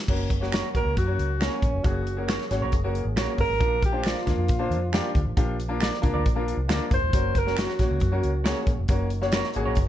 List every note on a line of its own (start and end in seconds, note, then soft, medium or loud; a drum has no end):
0.08 0.61 F#1 loud
0.08 3.58 F#3 medium
0.08 0.27 A#3 medium
0.08 3.58 A#3 medium
0.08 0.28 C#4 medium
0.08 3.58 C#4 medium
0.08 1.83 F#4 medium
0.08 0.28 F#4 medium
0.08 0.28 A#4 medium
0.08 kick loud
0.08 crash medium
0.30 kick medium
0.30 closed hi-hat medium
0.41 0.60 A#3 medium
0.41 0.60 C#4 medium
0.41 0.61 F#4 medium
0.41 0.61 A#4 medium
0.41 snare soft
0.52 0.67 F#4 medium
0.52 0.68 A#4 medium
0.52 0.68 C#5 medium
0.52 finger snap medium
0.52 snare loud
0.52 closed hi-hat medium
0.74 0.84 A#1 medium
0.74 0.93 A#3 medium
0.74 0.93 C#4 medium
0.74 0.93 F#4 medium
0.74 0.94 A#4 medium
0.74 0.96 A#4 loud
0.74 kick medium
0.74 closed hi-hat medium
0.85 0.95 C#2 medium
0.97 1.16 F#2 loud
0.97 1.44 F#4 loud
0.97 kick medium
0.97 closed hi-hat medium
1.06 1.26 A#3 medium
1.06 1.26 C#4 medium
1.06 1.26 F#4 medium
1.06 1.26 A#4 medium
1.19 1.47 C#2 medium
1.19 closed hi-hat medium
1.40 1.65 A#3 medium
1.40 1.65 C#4 medium
1.40 1.87 C#4 medium
1.40 1.66 F#4 medium
1.40 1.56 F#4 medium
1.40 1.66 A#4 medium
1.40 1.56 A#4 medium
1.40 1.56 C#5 medium
1.40 finger snap medium
1.40 snare loud
1.40 closed hi-hat medium
1.62 1.72 A#1 medium
1.62 kick loud
1.62 closed hi-hat medium
1.73 1.83 F1 medium
1.84 2.37 F#1 medium
1.84 2.03 A#3 medium
1.84 2.04 C#4 medium
1.84 2.29 F#4 medium
1.84 2.04 F#4 medium
1.84 3.59 G#4 medium
1.84 2.04 G#4 medium
1.84 kick loud
1.84 closed hi-hat medium
2.07 closed hi-hat medium
2.17 2.36 A#3 medium
2.17 2.36 C#4 medium
2.17 2.37 F#4 medium
2.17 2.37 A#4 medium
2.28 2.43 F#4 medium
2.28 2.44 A#4 medium
2.28 2.44 C#5 medium
2.28 finger snap medium
2.28 snare medium
2.28 closed hi-hat medium
2.41 snare soft
2.51 2.60 G#1 loud
2.51 2.70 A#3 medium
2.51 2.70 C#4 medium
2.51 2.70 F#4 medium
2.51 2.70 C#5 loud
2.51 snare soft
2.51 closed hi-hat medium
2.61 2.71 A#1 medium
2.61 2.74 F#4 soft
2.61 2.74 A#4 medium
2.61 2.74 C#5 medium
2.72 3.02 F#1 medium
2.72 kick medium
2.72 closed hi-hat medium
2.84 3.03 A#3 medium
2.84 3.03 C#4 medium
2.84 3.03 F#4 medium
2.84 3.03 A#4 loud
2.95 closed hi-hat medium
3.05 3.15 G#1 loud
3.16 3.42 A#3 medium
3.16 3.42 C#4 medium
3.16 3.31 F#4 medium
3.16 3.42 F#4 medium
3.16 3.42 A#4 medium
3.16 3.32 A#4 medium
3.16 3.32 C#5 medium
3.16 finger snap medium
3.16 snare loud
3.16 closed hi-hat medium
3.38 3.48 F#1 medium
3.38 3.81 A#4 loud
3.38 kick medium
3.38 open hi-hat medium
3.49 3.59 G#1 medium
3.59 4.13 A#1 loud
3.59 7.09 F3 medium
3.59 3.79 A#3 medium
3.59 9.88 A#3 medium
3.59 3.79 D4 medium
3.59 7.09 D4 medium
3.59 5.35 F4 medium
3.59 3.79 F4 medium
3.59 3.80 A#4 medium
3.59 kick loud
3.59 closed hi-hat medium
3.82 4.08 G4 loud
3.82 kick medium
3.82 closed hi-hat medium
3.92 4.12 A#3 medium
3.92 4.12 D4 medium
3.92 4.12 F4 medium
3.92 4.12 C5 medium
4.04 4.20 F4 medium
4.04 5.16 F4 medium
4.04 4.20 A#4 medium
4.04 4.20 D5 medium
4.04 finger snap medium
4.04 snare loud
4.04 closed hi-hat medium
4.18 snare soft
4.25 4.36 D2 medium
4.25 4.45 A#3 medium
4.25 4.45 D4 medium
4.25 4.45 F4 medium
4.25 4.45 A#4 medium
4.25 kick medium
4.25 snare soft
4.25 closed hi-hat medium
4.37 4.47 F2 medium
4.48 4.71 A#2 loud
4.48 kick loud
4.48 closed hi-hat medium
4.59 4.78 A#3 medium
4.59 4.78 D4 medium
4.59 4.79 F4 medium
4.59 4.79 C5 medium
4.70 4.99 F2 loud
4.70 closed hi-hat medium
4.92 5.18 A#3 medium
4.92 5.18 D4 medium
4.92 5.08 F4 medium
4.92 5.18 F4 medium
4.92 5.18 G4 loud
4.92 5.08 A#4 medium
4.92 5.09 D5 loud
4.92 finger snap medium
4.92 snare loud
4.92 closed hi-hat medium
5.15 5.25 D2 loud
5.15 kick loud
5.15 closed hi-hat medium
5.26 5.35 A1 medium
5.37 5.89 A#1 loud
5.37 5.56 A#3 medium
5.37 5.56 D4 medium
5.37 5.56 F4 medium
5.37 7.11 G4 medium
5.37 5.56 G4 medium
5.37 kick loud
5.37 closed hi-hat loud
5.60 closed hi-hat medium
5.68 5.88 A#3 medium
5.68 5.88 D4 medium
5.68 5.88 F4 medium
5.68 5.89 A#4 loud
5.81 5.96 F4 medium
5.81 5.96 A#4 medium
5.81 5.97 D5 medium
5.81 finger snap medium
5.81 snare medium
5.81 closed hi-hat medium
5.94 snare soft
6.02 6.13 C2 medium
6.02 6.21 A#3 medium
6.02 6.21 D4 medium
6.02 6.21 F4 medium
6.02 6.22 A#4 loud
6.02 kick medium
6.02 closed hi-hat medium
6.14 6.23 D2 medium
6.14 6.26 F4 soft
6.14 6.26 A#4 medium
6.14 6.25 D5 medium
6.26 6.54 A#1 medium
6.26 kick medium
6.26 closed hi-hat medium
6.35 6.54 A#3 medium
6.35 6.55 D4 medium
6.35 6.55 F4 medium
6.35 6.55 A#4 medium
6.48 closed hi-hat medium
6.57 6.67 C2 loud
6.68 6.79 D2 medium
6.68 6.94 A#3 medium
6.68 6.94 D4 medium
6.68 6.94 F4 medium
6.68 6.84 F4 medium
6.68 6.94 A#4 medium
6.68 6.84 A#4 medium
6.68 6.85 D5 medium
6.68 finger snap medium
6.68 snare loud
6.68 closed hi-hat medium
6.91 7.01 F1 medium
6.91 7.40 C5 loud
6.91 kick loud
6.91 closed hi-hat medium
7.02 7.11 D#1 medium
7.13 7.65 F#1 loud
7.13 9.88 F#3 medium
7.13 7.32 A#3 medium
7.13 7.32 C#4 medium
7.13 8.87 C#4 medium
7.13 7.32 F#4 medium
7.13 9.88 F#4 medium
7.13 7.32 A#4 medium
7.13 kick loud
7.13 closed hi-hat medium
7.35 7.59 A#4 loud
7.35 kick medium
7.35 closed hi-hat medium
7.46 7.65 A#3 medium
7.46 7.65 C#4 medium
7.46 7.65 F#4 medium
7.46 7.65 A#4 medium
7.46 snare soft
7.57 7.72 F#4 medium
7.57 8.64 F#4 medium
7.57 7.72 A#4 medium
7.57 7.72 C#5 medium
7.57 finger snap loud
7.57 snare loud
7.57 closed hi-hat loud
7.69 snare soft
7.79 7.89 A#1 medium
7.79 7.98 A#3 medium
7.79 7.98 C#4 medium
7.79 7.98 F#4 medium
7.79 7.98 A#4 medium
7.79 kick medium
7.79 snare soft
7.79 closed hi-hat medium
7.91 8.00 C#2 loud
8.00 8.20 F#2 loud
8.00 kick medium
8.00 closed hi-hat medium
8.12 8.30 A#3 medium
8.12 8.31 C#4 medium
8.12 8.31 F#4 medium
8.12 8.31 A#4 medium
8.23 8.52 C#2 loud
8.23 closed hi-hat medium
8.44 8.69 A#3 medium
8.44 8.70 C#4 medium
8.44 8.59 F#4 medium
8.44 8.70 F#4 medium
8.44 8.70 G#4 medium
8.44 8.60 A#4 medium
8.44 8.60 C#5 loud
8.44 finger snap medium
8.44 snare loud
8.44 closed hi-hat loud
8.67 8.77 A#1 medium
8.67 kick loud
8.67 closed hi-hat medium
8.79 8.88 F1 medium
8.88 9.41 F#1 loud
8.88 9.08 A#3 medium
8.88 9.08 C#4 medium
8.88 9.88 D#4 medium
8.88 9.08 F#4 medium
8.88 9.08 A#4 medium
8.88 kick loud
8.88 closed hi-hat medium
9.10 closed hi-hat medium
9.22 9.40 A#3 medium
9.22 9.40 C#4 medium
9.22 9.41 F#4 medium
9.22 9.41 C#5 loud
9.22 snare soft
9.32 9.48 F#4 medium
9.32 9.48 A#4 medium
9.32 9.48 C#5 loud
9.32 finger snap medium
9.32 snare loud
9.32 closed hi-hat loud
9.44 snare soft
9.54 9.65 G#1 medium
9.54 9.73 A#3 medium
9.54 9.74 C#4 medium
9.54 9.74 F#4 medium
9.54 9.74 G#4 loud
9.54 closed hi-hat medium
9.65 9.76 A#1 medium
9.65 9.78 F#4 medium
9.65 9.78 A#4 medium
9.65 9.77 C#5 medium
9.75 9.88 F#1 medium
9.75 kick medium
9.75 closed hi-hat medium